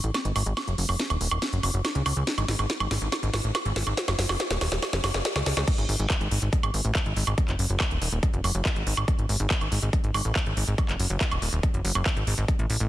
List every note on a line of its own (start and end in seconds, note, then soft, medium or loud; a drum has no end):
0.04 0.11 A1 medium
0.04 closed hi-hat soft
0.14 snare medium
0.14 closed hi-hat medium
0.14 high woodblock soft
0.25 0.32 G#1 medium
0.25 closed hi-hat soft
0.36 0.43 G#1 loud
0.36 open hi-hat loud
0.36 high woodblock soft
0.46 0.53 G#1 loud
0.46 closed hi-hat soft
0.57 snare medium
0.57 closed hi-hat medium
0.57 high woodblock medium
0.68 0.75 F#1 medium
0.68 closed hi-hat soft
0.78 0.85 F#1 loud
0.78 open hi-hat loud
0.89 0.96 F#1 loud
0.89 open hi-hat medium
0.89 high woodblock soft
0.99 snare medium
0.99 closed hi-hat medium
1.10 1.17 D#1 medium
1.10 closed hi-hat soft
1.10 high woodblock soft
1.21 1.28 D#1 loud
1.21 open hi-hat loud
1.31 1.39 D#1 medium
1.31 high woodblock medium
1.42 snare medium
1.42 closed hi-hat medium
1.53 1.60 F#1 medium
1.53 closed hi-hat soft
1.63 1.70 F#1 loud
1.63 open hi-hat loud
1.63 high woodblock soft
1.74 1.81 F#1 medium
1.74 closed hi-hat soft
1.85 snare medium
1.85 closed hi-hat medium
1.85 high woodblock soft
1.95 2.02 C#2 medium
1.95 closed hi-hat soft
2.06 2.13 C#2 loud
2.06 open hi-hat loud
2.06 high woodblock medium
2.16 2.24 C#2 medium
2.16 closed hi-hat soft
2.27 snare medium
2.27 closed hi-hat medium
2.38 2.45 G#1 medium
2.38 closed hi-hat soft
2.38 high woodblock soft
2.48 2.56 G#1 loud
2.48 snare medium
2.48 open hi-hat loud
2.59 2.66 G#1 medium
2.59 closed hi-hat soft
2.59 high woodblock soft
2.70 snare medium
2.70 closed hi-hat medium
2.80 2.87 G#1 medium
2.80 closed hi-hat soft
2.80 high woodblock medium
2.91 2.98 G#1 loud
2.91 snare medium
2.91 open hi-hat loud
3.02 3.09 G#1 medium
3.02 closed hi-hat soft
3.12 snare medium
3.12 closed hi-hat medium
3.12 high woodblock soft
3.23 3.30 G#1 medium
3.23 closed hi-hat soft
3.33 3.41 G#1 loud
3.33 snare medium
3.33 open hi-hat loud
3.33 high woodblock soft
3.44 3.51 A1 medium
3.44 closed hi-hat soft
3.55 snare medium
3.55 closed hi-hat medium
3.55 high woodblock medium
3.65 3.73 G#1 medium
3.65 closed hi-hat soft
3.76 3.83 G#1 loud
3.76 snare medium
3.76 open hi-hat loud
3.87 3.94 G#1 medium
3.87 closed hi-hat soft
3.87 high woodblock soft
3.97 snare loud
3.97 closed hi-hat medium
4.08 4.15 F#1 medium
4.08 snare medium
4.08 closed hi-hat soft
4.08 high woodblock soft
4.19 4.26 F#1 loud
4.19 snare medium
4.19 open hi-hat loud
4.29 4.36 F#1 loud
4.29 snare medium
4.29 open hi-hat medium
4.29 high woodblock medium
4.40 snare loud
4.40 closed hi-hat medium
4.50 4.58 D#1 medium
4.50 snare medium
4.50 closed hi-hat soft
4.61 4.68 D#1 loud
4.61 snare loud
4.61 open hi-hat loud
4.61 high woodblock soft
4.72 4.79 D#1 medium
4.72 snare medium
4.82 snare loud
4.82 closed hi-hat medium
4.82 high woodblock soft
4.93 5.00 F#1 medium
4.93 snare medium
4.93 closed hi-hat soft
5.04 5.11 F#1 loud
5.04 snare loud
5.04 open hi-hat loud
5.04 high woodblock medium
5.14 5.22 F#1 medium
5.14 snare medium
5.14 closed hi-hat soft
5.25 snare loud
5.25 closed hi-hat medium
5.36 5.43 C#2 medium
5.36 snare loud
5.36 closed hi-hat soft
5.36 high woodblock soft
5.46 5.53 C#2 loud
5.46 snare loud
5.46 open hi-hat loud
5.57 5.64 C#2 loud
5.57 snare loud
5.57 closed hi-hat soft
5.57 high woodblock soft
5.68 kick loud
5.68 closed hi-hat medium
5.68 crash loud
5.78 5.85 G#1 medium
5.78 closed hi-hat soft
5.89 5.96 G#1 loud
5.89 open hi-hat loud
5.99 6.07 G#1 medium
5.99 closed hi-hat medium
6.10 kick loud
6.10 clap loud
6.10 closed hi-hat medium
6.10 high woodblock soft
6.21 6.28 G#1 medium
6.21 closed hi-hat soft
6.31 6.39 G#1 loud
6.31 open hi-hat loud
6.42 6.49 G#1 medium
6.42 closed hi-hat medium
6.53 kick loud
6.53 closed hi-hat medium
6.63 6.70 G#1 medium
6.63 closed hi-hat soft
6.63 high woodblock medium
6.74 6.81 G#1 loud
6.74 open hi-hat loud
6.85 6.92 A1 medium
6.85 closed hi-hat medium
6.95 kick loud
6.95 clap loud
6.95 closed hi-hat medium
7.06 7.13 G#1 medium
7.06 closed hi-hat soft
7.16 7.24 G#1 loud
7.16 open hi-hat loud
7.27 7.34 G#1 medium
7.27 closed hi-hat medium
7.27 high woodblock soft
7.38 kick loud
7.38 closed hi-hat medium
7.48 7.56 F#1 medium
7.48 clap soft
7.48 closed hi-hat soft
7.59 7.66 F#1 loud
7.59 open hi-hat loud
7.70 7.77 F#1 medium
7.70 closed hi-hat medium
7.80 kick loud
7.80 clap loud
7.80 closed hi-hat medium
7.80 high woodblock medium
7.91 7.98 D#1 medium
7.91 closed hi-hat soft
8.02 8.09 D#1 loud
8.02 open hi-hat loud
8.12 8.19 D#1 medium
8.12 closed hi-hat medium
8.23 kick loud
8.23 closed hi-hat medium
8.34 8.41 F#1 medium
8.34 closed hi-hat soft
8.44 8.51 F#1 loud
8.44 open hi-hat loud
8.44 high woodblock soft
8.55 8.62 F#1 medium
8.55 closed hi-hat medium
8.65 kick loud
8.65 clap loud
8.65 closed hi-hat medium
8.76 8.83 G#1 medium
8.76 closed hi-hat soft
8.87 8.94 G#1 loud
8.87 open hi-hat loud
8.97 9.05 G#1 medium
8.97 closed hi-hat medium
8.97 high woodblock medium
9.08 kick loud
9.08 closed hi-hat medium
9.19 9.26 G#1 medium
9.19 closed hi-hat soft
9.29 9.36 G#1 loud
9.29 open hi-hat loud
9.40 9.47 G#1 loud
9.40 closed hi-hat medium
9.51 kick loud
9.51 clap loud
9.51 closed hi-hat medium
9.61 9.68 G#1 medium
9.61 closed hi-hat soft
9.61 high woodblock soft
9.72 9.79 G#1 loud
9.72 open hi-hat loud
9.82 9.90 G#1 medium
9.82 closed hi-hat medium
9.93 kick loud
9.93 closed hi-hat medium
10.04 10.11 G#1 medium
10.04 closed hi-hat soft
10.14 10.22 G#1 loud
10.14 open hi-hat loud
10.14 high woodblock medium
10.25 10.32 A1 medium
10.25 closed hi-hat medium
10.36 kick loud
10.36 clap loud
10.36 closed hi-hat medium
10.46 10.53 G#1 medium
10.46 closed hi-hat soft
10.57 10.64 G#1 loud
10.57 open hi-hat loud
10.68 10.75 G#1 loud
10.68 closed hi-hat medium
10.78 kick loud
10.78 closed hi-hat medium
10.78 high woodblock soft
10.89 10.96 F#1 medium
10.89 clap soft
10.89 closed hi-hat soft
10.99 11.07 F#1 loud
10.99 open hi-hat loud
11.10 11.17 F#1 medium
11.10 closed hi-hat medium
11.21 kick loud
11.21 clap loud
11.21 closed hi-hat medium
11.31 11.39 D#1 medium
11.31 closed hi-hat soft
11.31 high woodblock medium
11.42 11.49 D#1 loud
11.42 open hi-hat loud
11.53 11.60 D#1 medium
11.53 closed hi-hat medium
11.63 kick loud
11.63 closed hi-hat medium
11.74 11.81 F#1 medium
11.74 closed hi-hat soft
11.85 11.92 F#1 loud
11.85 open hi-hat loud
11.95 12.02 F#1 medium
11.95 closed hi-hat medium
11.95 high woodblock soft
12.06 kick loud
12.06 clap loud
12.06 closed hi-hat medium
12.16 12.24 G#1 medium
12.16 closed hi-hat soft
12.27 12.34 G#1 loud
12.27 open hi-hat loud
12.38 12.45 G#1 medium
12.38 closed hi-hat medium
12.48 kick loud
12.48 closed hi-hat medium
12.59 12.66 A1 medium
12.59 closed hi-hat soft
12.70 12.77 A1 loud
12.70 open hi-hat loud
12.80 12.87 A1 medium
12.80 closed hi-hat medium